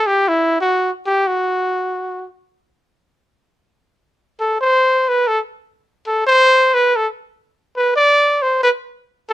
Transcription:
0.07 G4
0.28 E4
0.61 F#4
1.06 G4
1.27 F#4
4.40 A4
4.61 C5
5.09 B4
5.28 A4
6.07 A4
6.27 C5
6.74 B4
6.96 A4
7.77 B4
7.96 D5
8.42 C5
8.63 B4
9.30 A4

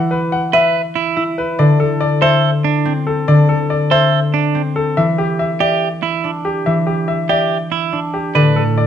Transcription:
Already playing: E3 E4 F#5
0.11 B4
0.32 F#5
0.53 B4 E5
0.95 E4
1.16 E4
1.38 B4
1.59 D3 D5
1.80 A4
2.00 D5
2.22 A4 C5 E5
2.64 D4
2.85 C4
3.07 A4
3.28 D3 D5
3.49 A4
3.70 D5
3.91 A4 C5 E5
4.34 D4
4.55 C4
4.76 A4
4.97 E3 E5
5.18 G4
5.39 E5
5.60 G4 D5 E5
6.03 E4
6.24 D4
6.45 G4
6.66 E3 E5
6.87 G4
7.08 E5
7.29 G4 D5 E5
7.72 E4
7.92 D4
8.14 G4
8.35 A2 D3 B4 D5
8.56 A4
8.78 D5

